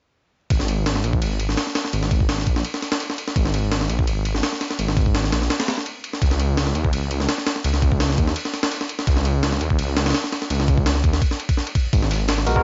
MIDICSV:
0, 0, Header, 1, 4, 480
1, 0, Start_track
1, 0, Tempo, 357143
1, 676, Time_signature, 4, 2, 24, 8
1, 16976, End_track
2, 0, Start_track
2, 0, Title_t, "Tine electric piano"
2, 0, Program_c, 0, 4
2, 16753, Note_on_c, 0, 56, 70
2, 16754, Note_on_c, 0, 59, 64
2, 16754, Note_on_c, 0, 66, 66
2, 16754, Note_on_c, 0, 70, 77
2, 16863, Note_off_c, 0, 56, 0
2, 16863, Note_off_c, 0, 59, 0
2, 16863, Note_off_c, 0, 66, 0
2, 16863, Note_off_c, 0, 70, 0
2, 16880, Note_on_c, 0, 56, 72
2, 16880, Note_on_c, 0, 59, 68
2, 16880, Note_on_c, 0, 66, 63
2, 16881, Note_on_c, 0, 70, 79
2, 16976, Note_off_c, 0, 56, 0
2, 16976, Note_off_c, 0, 59, 0
2, 16976, Note_off_c, 0, 66, 0
2, 16976, Note_off_c, 0, 70, 0
2, 16976, End_track
3, 0, Start_track
3, 0, Title_t, "Detuned saw bass"
3, 0, Program_c, 1, 39
3, 676, Note_on_c, 1, 32, 93
3, 1379, Note_off_c, 1, 32, 0
3, 1397, Note_on_c, 1, 34, 94
3, 1614, Note_off_c, 1, 34, 0
3, 1636, Note_on_c, 1, 32, 79
3, 2098, Note_off_c, 1, 32, 0
3, 2596, Note_on_c, 1, 32, 95
3, 3298, Note_off_c, 1, 32, 0
3, 3316, Note_on_c, 1, 34, 97
3, 3534, Note_off_c, 1, 34, 0
3, 4514, Note_on_c, 1, 32, 93
3, 5217, Note_off_c, 1, 32, 0
3, 5236, Note_on_c, 1, 34, 99
3, 5454, Note_off_c, 1, 34, 0
3, 5477, Note_on_c, 1, 32, 79
3, 5939, Note_off_c, 1, 32, 0
3, 6436, Note_on_c, 1, 32, 95
3, 7138, Note_off_c, 1, 32, 0
3, 7154, Note_on_c, 1, 34, 95
3, 7373, Note_off_c, 1, 34, 0
3, 8356, Note_on_c, 1, 37, 94
3, 9058, Note_off_c, 1, 37, 0
3, 9073, Note_on_c, 1, 39, 96
3, 9292, Note_off_c, 1, 39, 0
3, 9312, Note_on_c, 1, 37, 78
3, 9776, Note_off_c, 1, 37, 0
3, 10274, Note_on_c, 1, 37, 96
3, 10977, Note_off_c, 1, 37, 0
3, 10993, Note_on_c, 1, 39, 98
3, 11212, Note_off_c, 1, 39, 0
3, 12193, Note_on_c, 1, 37, 99
3, 12897, Note_off_c, 1, 37, 0
3, 12917, Note_on_c, 1, 39, 97
3, 13134, Note_off_c, 1, 39, 0
3, 13157, Note_on_c, 1, 37, 80
3, 13619, Note_off_c, 1, 37, 0
3, 14117, Note_on_c, 1, 37, 99
3, 14819, Note_off_c, 1, 37, 0
3, 14835, Note_on_c, 1, 39, 97
3, 15053, Note_off_c, 1, 39, 0
3, 16034, Note_on_c, 1, 32, 96
3, 16737, Note_off_c, 1, 32, 0
3, 16756, Note_on_c, 1, 34, 98
3, 16974, Note_off_c, 1, 34, 0
3, 16976, End_track
4, 0, Start_track
4, 0, Title_t, "Drums"
4, 676, Note_on_c, 9, 36, 104
4, 676, Note_on_c, 9, 51, 81
4, 804, Note_on_c, 9, 38, 42
4, 810, Note_off_c, 9, 51, 0
4, 811, Note_off_c, 9, 36, 0
4, 917, Note_on_c, 9, 51, 65
4, 939, Note_off_c, 9, 38, 0
4, 1052, Note_off_c, 9, 51, 0
4, 1157, Note_on_c, 9, 38, 108
4, 1157, Note_on_c, 9, 51, 83
4, 1284, Note_off_c, 9, 38, 0
4, 1284, Note_on_c, 9, 38, 52
4, 1292, Note_off_c, 9, 51, 0
4, 1397, Note_on_c, 9, 51, 60
4, 1419, Note_off_c, 9, 38, 0
4, 1523, Note_on_c, 9, 36, 90
4, 1531, Note_off_c, 9, 51, 0
4, 1636, Note_on_c, 9, 51, 81
4, 1657, Note_off_c, 9, 36, 0
4, 1771, Note_off_c, 9, 51, 0
4, 1876, Note_on_c, 9, 51, 63
4, 2004, Note_on_c, 9, 38, 36
4, 2010, Note_off_c, 9, 51, 0
4, 2116, Note_off_c, 9, 38, 0
4, 2116, Note_on_c, 9, 38, 109
4, 2116, Note_on_c, 9, 51, 84
4, 2243, Note_off_c, 9, 38, 0
4, 2243, Note_on_c, 9, 38, 35
4, 2250, Note_off_c, 9, 51, 0
4, 2355, Note_off_c, 9, 38, 0
4, 2355, Note_on_c, 9, 38, 97
4, 2355, Note_on_c, 9, 51, 73
4, 2482, Note_off_c, 9, 38, 0
4, 2482, Note_on_c, 9, 38, 41
4, 2490, Note_off_c, 9, 51, 0
4, 2596, Note_on_c, 9, 51, 79
4, 2616, Note_off_c, 9, 38, 0
4, 2723, Note_on_c, 9, 38, 44
4, 2730, Note_off_c, 9, 51, 0
4, 2836, Note_on_c, 9, 36, 90
4, 2837, Note_on_c, 9, 51, 64
4, 2858, Note_off_c, 9, 38, 0
4, 2962, Note_off_c, 9, 36, 0
4, 2962, Note_on_c, 9, 36, 83
4, 2972, Note_off_c, 9, 51, 0
4, 3076, Note_on_c, 9, 38, 108
4, 3076, Note_on_c, 9, 51, 80
4, 3097, Note_off_c, 9, 36, 0
4, 3204, Note_off_c, 9, 38, 0
4, 3204, Note_on_c, 9, 38, 41
4, 3211, Note_off_c, 9, 51, 0
4, 3315, Note_on_c, 9, 36, 82
4, 3316, Note_on_c, 9, 51, 63
4, 3338, Note_off_c, 9, 38, 0
4, 3443, Note_on_c, 9, 38, 54
4, 3450, Note_off_c, 9, 36, 0
4, 3450, Note_off_c, 9, 51, 0
4, 3555, Note_on_c, 9, 51, 81
4, 3577, Note_off_c, 9, 38, 0
4, 3683, Note_on_c, 9, 38, 45
4, 3690, Note_off_c, 9, 51, 0
4, 3796, Note_off_c, 9, 38, 0
4, 3796, Note_on_c, 9, 38, 36
4, 3796, Note_on_c, 9, 51, 62
4, 3921, Note_off_c, 9, 38, 0
4, 3921, Note_on_c, 9, 38, 108
4, 3930, Note_off_c, 9, 51, 0
4, 4035, Note_on_c, 9, 51, 80
4, 4056, Note_off_c, 9, 38, 0
4, 4163, Note_on_c, 9, 38, 45
4, 4169, Note_off_c, 9, 51, 0
4, 4276, Note_on_c, 9, 51, 61
4, 4297, Note_off_c, 9, 38, 0
4, 4403, Note_on_c, 9, 38, 47
4, 4411, Note_off_c, 9, 51, 0
4, 4515, Note_on_c, 9, 36, 98
4, 4516, Note_on_c, 9, 51, 82
4, 4538, Note_off_c, 9, 38, 0
4, 4644, Note_on_c, 9, 38, 44
4, 4650, Note_off_c, 9, 36, 0
4, 4651, Note_off_c, 9, 51, 0
4, 4755, Note_on_c, 9, 51, 64
4, 4778, Note_off_c, 9, 38, 0
4, 4890, Note_off_c, 9, 51, 0
4, 4994, Note_on_c, 9, 38, 105
4, 4994, Note_on_c, 9, 51, 83
4, 5122, Note_off_c, 9, 38, 0
4, 5122, Note_on_c, 9, 38, 52
4, 5128, Note_off_c, 9, 51, 0
4, 5235, Note_on_c, 9, 51, 62
4, 5256, Note_off_c, 9, 38, 0
4, 5361, Note_on_c, 9, 36, 90
4, 5370, Note_off_c, 9, 51, 0
4, 5475, Note_on_c, 9, 51, 79
4, 5496, Note_off_c, 9, 36, 0
4, 5609, Note_off_c, 9, 51, 0
4, 5715, Note_on_c, 9, 51, 61
4, 5844, Note_on_c, 9, 38, 38
4, 5850, Note_off_c, 9, 51, 0
4, 5956, Note_off_c, 9, 38, 0
4, 5956, Note_on_c, 9, 38, 108
4, 5956, Note_on_c, 9, 51, 83
4, 6083, Note_off_c, 9, 38, 0
4, 6083, Note_on_c, 9, 38, 37
4, 6091, Note_off_c, 9, 51, 0
4, 6196, Note_off_c, 9, 38, 0
4, 6196, Note_on_c, 9, 38, 50
4, 6196, Note_on_c, 9, 51, 63
4, 6324, Note_off_c, 9, 38, 0
4, 6324, Note_on_c, 9, 38, 44
4, 6330, Note_off_c, 9, 51, 0
4, 6436, Note_on_c, 9, 51, 82
4, 6459, Note_off_c, 9, 38, 0
4, 6564, Note_on_c, 9, 38, 45
4, 6571, Note_off_c, 9, 51, 0
4, 6676, Note_on_c, 9, 36, 90
4, 6678, Note_on_c, 9, 51, 65
4, 6699, Note_off_c, 9, 38, 0
4, 6803, Note_off_c, 9, 36, 0
4, 6803, Note_on_c, 9, 36, 82
4, 6812, Note_off_c, 9, 51, 0
4, 6917, Note_on_c, 9, 38, 109
4, 6917, Note_on_c, 9, 51, 80
4, 6937, Note_off_c, 9, 36, 0
4, 7045, Note_off_c, 9, 38, 0
4, 7045, Note_on_c, 9, 38, 39
4, 7052, Note_off_c, 9, 51, 0
4, 7156, Note_off_c, 9, 38, 0
4, 7156, Note_on_c, 9, 38, 92
4, 7156, Note_on_c, 9, 51, 71
4, 7284, Note_off_c, 9, 38, 0
4, 7284, Note_on_c, 9, 38, 38
4, 7290, Note_off_c, 9, 51, 0
4, 7395, Note_off_c, 9, 38, 0
4, 7395, Note_on_c, 9, 38, 101
4, 7395, Note_on_c, 9, 51, 71
4, 7523, Note_off_c, 9, 38, 0
4, 7523, Note_off_c, 9, 51, 0
4, 7523, Note_on_c, 9, 38, 97
4, 7523, Note_on_c, 9, 51, 75
4, 7637, Note_off_c, 9, 38, 0
4, 7637, Note_off_c, 9, 51, 0
4, 7637, Note_on_c, 9, 38, 94
4, 7637, Note_on_c, 9, 51, 73
4, 7764, Note_off_c, 9, 38, 0
4, 7764, Note_on_c, 9, 38, 37
4, 7772, Note_off_c, 9, 51, 0
4, 7877, Note_on_c, 9, 51, 56
4, 7899, Note_off_c, 9, 38, 0
4, 8011, Note_off_c, 9, 51, 0
4, 8117, Note_on_c, 9, 51, 56
4, 8244, Note_on_c, 9, 38, 33
4, 8251, Note_off_c, 9, 51, 0
4, 8356, Note_on_c, 9, 36, 102
4, 8356, Note_on_c, 9, 51, 83
4, 8378, Note_off_c, 9, 38, 0
4, 8483, Note_on_c, 9, 38, 44
4, 8490, Note_off_c, 9, 36, 0
4, 8491, Note_off_c, 9, 51, 0
4, 8595, Note_on_c, 9, 51, 66
4, 8617, Note_off_c, 9, 38, 0
4, 8730, Note_off_c, 9, 51, 0
4, 8836, Note_on_c, 9, 38, 106
4, 8836, Note_on_c, 9, 51, 82
4, 8961, Note_off_c, 9, 38, 0
4, 8961, Note_on_c, 9, 38, 52
4, 8970, Note_off_c, 9, 51, 0
4, 9073, Note_on_c, 9, 51, 62
4, 9096, Note_off_c, 9, 38, 0
4, 9201, Note_on_c, 9, 36, 91
4, 9207, Note_off_c, 9, 51, 0
4, 9313, Note_on_c, 9, 51, 83
4, 9335, Note_off_c, 9, 36, 0
4, 9447, Note_off_c, 9, 51, 0
4, 9554, Note_on_c, 9, 51, 65
4, 9681, Note_on_c, 9, 38, 37
4, 9688, Note_off_c, 9, 51, 0
4, 9793, Note_off_c, 9, 38, 0
4, 9793, Note_on_c, 9, 38, 107
4, 9793, Note_on_c, 9, 51, 81
4, 9920, Note_off_c, 9, 38, 0
4, 9920, Note_on_c, 9, 38, 36
4, 9927, Note_off_c, 9, 51, 0
4, 10034, Note_off_c, 9, 38, 0
4, 10034, Note_on_c, 9, 38, 100
4, 10034, Note_on_c, 9, 51, 73
4, 10160, Note_off_c, 9, 38, 0
4, 10160, Note_on_c, 9, 38, 43
4, 10168, Note_off_c, 9, 51, 0
4, 10272, Note_on_c, 9, 51, 83
4, 10294, Note_off_c, 9, 38, 0
4, 10399, Note_on_c, 9, 38, 44
4, 10407, Note_off_c, 9, 51, 0
4, 10512, Note_on_c, 9, 51, 66
4, 10513, Note_on_c, 9, 36, 88
4, 10533, Note_off_c, 9, 38, 0
4, 10640, Note_off_c, 9, 36, 0
4, 10640, Note_on_c, 9, 36, 87
4, 10647, Note_off_c, 9, 51, 0
4, 10753, Note_on_c, 9, 38, 108
4, 10753, Note_on_c, 9, 51, 82
4, 10774, Note_off_c, 9, 36, 0
4, 10881, Note_off_c, 9, 38, 0
4, 10881, Note_on_c, 9, 38, 41
4, 10888, Note_off_c, 9, 51, 0
4, 10993, Note_on_c, 9, 36, 90
4, 10993, Note_on_c, 9, 51, 64
4, 11015, Note_off_c, 9, 38, 0
4, 11121, Note_on_c, 9, 38, 55
4, 11128, Note_off_c, 9, 36, 0
4, 11128, Note_off_c, 9, 51, 0
4, 11234, Note_on_c, 9, 51, 85
4, 11255, Note_off_c, 9, 38, 0
4, 11360, Note_on_c, 9, 38, 45
4, 11368, Note_off_c, 9, 51, 0
4, 11472, Note_off_c, 9, 38, 0
4, 11472, Note_on_c, 9, 38, 35
4, 11472, Note_on_c, 9, 51, 61
4, 11599, Note_off_c, 9, 38, 0
4, 11599, Note_on_c, 9, 38, 109
4, 11607, Note_off_c, 9, 51, 0
4, 11713, Note_on_c, 9, 51, 82
4, 11733, Note_off_c, 9, 38, 0
4, 11840, Note_on_c, 9, 38, 45
4, 11847, Note_off_c, 9, 51, 0
4, 11952, Note_on_c, 9, 51, 63
4, 11974, Note_off_c, 9, 38, 0
4, 12080, Note_on_c, 9, 38, 48
4, 12086, Note_off_c, 9, 51, 0
4, 12192, Note_on_c, 9, 51, 84
4, 12193, Note_on_c, 9, 36, 104
4, 12214, Note_off_c, 9, 38, 0
4, 12319, Note_on_c, 9, 38, 44
4, 12326, Note_off_c, 9, 51, 0
4, 12328, Note_off_c, 9, 36, 0
4, 12433, Note_on_c, 9, 51, 64
4, 12454, Note_off_c, 9, 38, 0
4, 12567, Note_off_c, 9, 51, 0
4, 12673, Note_on_c, 9, 38, 107
4, 12673, Note_on_c, 9, 51, 83
4, 12801, Note_off_c, 9, 38, 0
4, 12801, Note_on_c, 9, 38, 53
4, 12807, Note_off_c, 9, 51, 0
4, 12913, Note_on_c, 9, 51, 62
4, 12935, Note_off_c, 9, 38, 0
4, 13041, Note_on_c, 9, 36, 93
4, 13048, Note_off_c, 9, 51, 0
4, 13153, Note_on_c, 9, 51, 83
4, 13176, Note_off_c, 9, 36, 0
4, 13287, Note_off_c, 9, 51, 0
4, 13394, Note_on_c, 9, 38, 100
4, 13394, Note_on_c, 9, 51, 73
4, 13522, Note_off_c, 9, 38, 0
4, 13522, Note_off_c, 9, 51, 0
4, 13522, Note_on_c, 9, 38, 86
4, 13522, Note_on_c, 9, 51, 62
4, 13579, Note_off_c, 9, 38, 0
4, 13579, Note_off_c, 9, 51, 0
4, 13579, Note_on_c, 9, 38, 81
4, 13579, Note_on_c, 9, 51, 65
4, 13635, Note_off_c, 9, 38, 0
4, 13635, Note_off_c, 9, 51, 0
4, 13635, Note_on_c, 9, 38, 111
4, 13635, Note_on_c, 9, 51, 85
4, 13763, Note_off_c, 9, 38, 0
4, 13763, Note_on_c, 9, 38, 37
4, 13769, Note_off_c, 9, 51, 0
4, 13877, Note_off_c, 9, 38, 0
4, 13877, Note_on_c, 9, 38, 52
4, 13877, Note_on_c, 9, 51, 65
4, 14003, Note_off_c, 9, 38, 0
4, 14003, Note_on_c, 9, 38, 43
4, 14011, Note_off_c, 9, 51, 0
4, 14116, Note_on_c, 9, 51, 84
4, 14138, Note_off_c, 9, 38, 0
4, 14244, Note_on_c, 9, 38, 46
4, 14250, Note_off_c, 9, 51, 0
4, 14356, Note_on_c, 9, 36, 93
4, 14356, Note_on_c, 9, 51, 64
4, 14378, Note_off_c, 9, 38, 0
4, 14483, Note_off_c, 9, 36, 0
4, 14483, Note_on_c, 9, 36, 88
4, 14490, Note_off_c, 9, 51, 0
4, 14596, Note_on_c, 9, 38, 109
4, 14596, Note_on_c, 9, 51, 86
4, 14617, Note_off_c, 9, 36, 0
4, 14724, Note_off_c, 9, 38, 0
4, 14724, Note_on_c, 9, 38, 43
4, 14731, Note_off_c, 9, 51, 0
4, 14836, Note_on_c, 9, 36, 86
4, 14837, Note_on_c, 9, 51, 63
4, 14859, Note_off_c, 9, 38, 0
4, 14964, Note_on_c, 9, 38, 57
4, 14970, Note_off_c, 9, 36, 0
4, 14971, Note_off_c, 9, 51, 0
4, 15075, Note_on_c, 9, 36, 93
4, 15076, Note_on_c, 9, 51, 76
4, 15098, Note_off_c, 9, 38, 0
4, 15202, Note_on_c, 9, 38, 39
4, 15210, Note_off_c, 9, 36, 0
4, 15211, Note_off_c, 9, 51, 0
4, 15316, Note_on_c, 9, 51, 57
4, 15337, Note_off_c, 9, 38, 0
4, 15442, Note_off_c, 9, 51, 0
4, 15442, Note_on_c, 9, 36, 93
4, 15442, Note_on_c, 9, 51, 74
4, 15555, Note_on_c, 9, 38, 39
4, 15576, Note_off_c, 9, 36, 0
4, 15576, Note_off_c, 9, 51, 0
4, 15682, Note_on_c, 9, 51, 59
4, 15689, Note_off_c, 9, 38, 0
4, 15794, Note_off_c, 9, 51, 0
4, 15794, Note_on_c, 9, 36, 92
4, 15794, Note_on_c, 9, 51, 73
4, 15929, Note_off_c, 9, 36, 0
4, 15929, Note_off_c, 9, 51, 0
4, 16034, Note_on_c, 9, 36, 108
4, 16034, Note_on_c, 9, 51, 82
4, 16035, Note_on_c, 9, 54, 82
4, 16161, Note_on_c, 9, 38, 44
4, 16168, Note_off_c, 9, 51, 0
4, 16169, Note_off_c, 9, 36, 0
4, 16169, Note_off_c, 9, 54, 0
4, 16263, Note_off_c, 9, 38, 0
4, 16263, Note_on_c, 9, 38, 47
4, 16273, Note_on_c, 9, 51, 67
4, 16276, Note_on_c, 9, 54, 67
4, 16397, Note_off_c, 9, 38, 0
4, 16408, Note_off_c, 9, 51, 0
4, 16410, Note_off_c, 9, 54, 0
4, 16505, Note_on_c, 9, 54, 82
4, 16513, Note_on_c, 9, 38, 110
4, 16513, Note_on_c, 9, 51, 83
4, 16514, Note_off_c, 9, 38, 0
4, 16514, Note_on_c, 9, 38, 114
4, 16639, Note_off_c, 9, 54, 0
4, 16641, Note_off_c, 9, 38, 0
4, 16641, Note_on_c, 9, 38, 52
4, 16647, Note_off_c, 9, 51, 0
4, 16754, Note_on_c, 9, 51, 65
4, 16756, Note_on_c, 9, 54, 63
4, 16776, Note_off_c, 9, 38, 0
4, 16882, Note_on_c, 9, 36, 90
4, 16888, Note_off_c, 9, 51, 0
4, 16890, Note_off_c, 9, 54, 0
4, 16976, Note_off_c, 9, 36, 0
4, 16976, End_track
0, 0, End_of_file